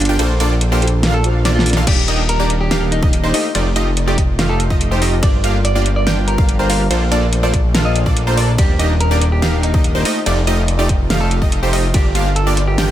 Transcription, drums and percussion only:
0.02 closed hi-hat
0.05 closed hi-hat
0.19 closed hi-hat, ride
0.40 closed hi-hat
0.61 closed hi-hat
0.82 closed hi-hat
0.87 closed hi-hat
1.03 snare, closed hi-hat, ride
1.24 closed hi-hat
1.45 snare, closed hi-hat
1.59 snare
1.66 closed hi-hat, open hi-hat
1.73 snare, closed hi-hat
1.87 kick, closed hi-hat, crash, ride
2.08 closed hi-hat
2.29 closed hi-hat
2.50 closed hi-hat
2.71 snare, closed hi-hat, ride
2.92 closed hi-hat
3.03 kick
3.13 closed hi-hat
3.34 open hi-hat
3.55 closed hi-hat, ride
3.76 closed hi-hat
3.97 closed hi-hat
4.18 kick, closed hi-hat
4.39 snare, closed hi-hat, ride
4.60 closed hi-hat
4.70 kick
4.81 closed hi-hat
5.02 open hi-hat
5.23 kick, closed hi-hat, ride
5.44 closed hi-hat
5.65 closed hi-hat
5.86 closed hi-hat
6.07 snare, closed hi-hat, ride
6.28 closed hi-hat
6.38 kick
6.49 closed hi-hat
6.70 open hi-hat
6.91 closed hi-hat, ride
7.12 closed hi-hat
7.33 closed hi-hat
7.54 kick, closed hi-hat
7.75 snare, closed hi-hat, ride
7.96 closed hi-hat
8.06 kick
8.17 closed hi-hat
8.38 open hi-hat
8.58 kick, closed hi-hat, ride
8.80 closed hi-hat
9.01 closed hi-hat
9.21 closed hi-hat
9.42 snare, closed hi-hat, ride
9.63 closed hi-hat
9.74 kick
9.84 closed hi-hat
10.05 open hi-hat
10.26 closed hi-hat, ride
10.47 closed hi-hat
10.68 closed hi-hat
10.89 kick, closed hi-hat
11.10 snare, closed hi-hat, ride
11.31 closed hi-hat
11.42 kick
11.52 closed hi-hat
11.73 open hi-hat
11.94 kick, closed hi-hat, ride
12.15 closed hi-hat
12.36 closed hi-hat
12.57 closed hi-hat
12.78 snare, closed hi-hat, ride

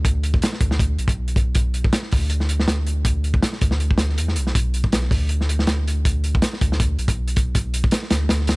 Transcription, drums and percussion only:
0.05 kick, closed hi-hat
0.23 closed hi-hat
0.34 kick
0.42 snare, closed hi-hat
0.53 snare
0.61 kick, closed hi-hat
0.71 snare
0.79 kick, closed hi-hat
0.99 closed hi-hat
1.08 kick, closed hi-hat
1.28 closed hi-hat
1.36 kick, closed hi-hat
1.55 kick, closed hi-hat
1.74 closed hi-hat
1.84 kick
1.93 snare, closed hi-hat
2.03 snare
2.11 kick, open hi-hat
2.30 closed hi-hat
2.40 snare
2.49 closed hi-hat
2.60 snare
2.68 snare, closed hi-hat
2.87 closed hi-hat
3.05 kick, closed hi-hat
3.24 closed hi-hat
3.34 kick
3.42 snare, closed hi-hat
3.53 snare
3.61 kick, closed hi-hat
3.71 snare
3.80 closed hi-hat
3.91 kick
3.98 snare, closed hi-hat
4.09 snare
4.18 closed hi-hat
4.28 snare
4.36 closed hi-hat
4.47 snare
4.55 kick, closed hi-hat
4.74 closed hi-hat
4.84 kick
4.92 snare, closed hi-hat
5.02 snare
5.11 kick, open hi-hat
5.29 closed hi-hat
5.41 snare
5.49 closed hi-hat
5.59 snare
5.67 snare, closed hi-hat
5.88 closed hi-hat
6.05 kick, closed hi-hat
6.24 closed hi-hat
6.35 kick
6.42 snare, closed hi-hat
6.53 snare
6.61 kick, closed hi-hat
6.72 snare
6.80 kick, closed hi-hat
6.99 closed hi-hat
7.08 kick, closed hi-hat
7.28 closed hi-hat
7.36 kick, closed hi-hat
7.55 kick, closed hi-hat
7.74 closed hi-hat
7.84 kick
7.91 snare, closed hi-hat
8.03 snare
8.10 snare, closed hi-hat
8.29 snare, closed hi-hat
8.40 snare
8.47 snare, closed hi-hat

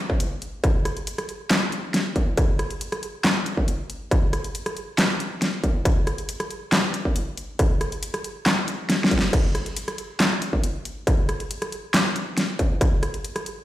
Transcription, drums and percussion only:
0.10 kick
0.20 closed hi-hat
0.42 closed hi-hat
0.64 kick, cross-stick, closed hi-hat
0.85 cross-stick, closed hi-hat
0.97 closed hi-hat
1.07 closed hi-hat
1.18 cross-stick, closed hi-hat
1.29 closed hi-hat
1.50 snare, clap, closed hi-hat
1.72 closed hi-hat
1.94 snare, closed hi-hat
2.16 kick, closed hi-hat
2.37 kick, cross-stick, closed hi-hat
2.59 cross-stick, closed hi-hat
2.70 closed hi-hat
2.81 closed hi-hat
2.92 cross-stick, closed hi-hat
3.03 closed hi-hat
3.24 snare, clap, closed hi-hat
3.46 closed hi-hat
3.57 kick
3.68 closed hi-hat
3.90 closed hi-hat
4.11 kick, cross-stick, closed hi-hat
4.33 cross-stick, closed hi-hat
4.44 closed hi-hat
4.55 closed hi-hat
4.66 cross-stick, closed hi-hat
4.77 closed hi-hat
4.98 snare, clap, closed hi-hat
5.20 closed hi-hat
5.42 snare, closed hi-hat
5.64 kick, closed hi-hat
5.85 kick, cross-stick, closed hi-hat
6.07 cross-stick, closed hi-hat
6.18 closed hi-hat
6.29 closed hi-hat
6.40 cross-stick, closed hi-hat
6.51 closed hi-hat
6.72 snare, clap, closed hi-hat
6.94 closed hi-hat
7.05 kick
7.16 closed hi-hat
7.37 closed hi-hat
7.59 kick, cross-stick, closed hi-hat
7.81 cross-stick, closed hi-hat
7.92 closed hi-hat
8.03 closed hi-hat
8.14 cross-stick, closed hi-hat
8.24 closed hi-hat
8.46 snare, clap, closed hi-hat
8.68 closed hi-hat
8.90 snare, closed hi-hat
9.04 snare
9.11 kick, closed hi-hat
9.19 snare
9.33 kick, cross-stick, closed hi-hat, crash
9.55 cross-stick, closed hi-hat
9.66 closed hi-hat
9.77 closed hi-hat
9.88 cross-stick, closed hi-hat
9.98 closed hi-hat
10.20 snare, clap, closed hi-hat
10.42 closed hi-hat
10.53 kick
10.64 closed hi-hat
10.85 closed hi-hat
11.07 kick, cross-stick, closed hi-hat
11.29 cross-stick, closed hi-hat
11.40 closed hi-hat
11.51 closed hi-hat
11.62 cross-stick, closed hi-hat
11.72 closed hi-hat
11.94 snare, clap, closed hi-hat
12.16 closed hi-hat
12.38 snare, closed hi-hat
12.59 kick, closed hi-hat
12.81 kick, cross-stick, closed hi-hat
13.03 cross-stick, closed hi-hat
13.14 closed hi-hat
13.25 closed hi-hat
13.36 cross-stick, closed hi-hat
13.46 closed hi-hat

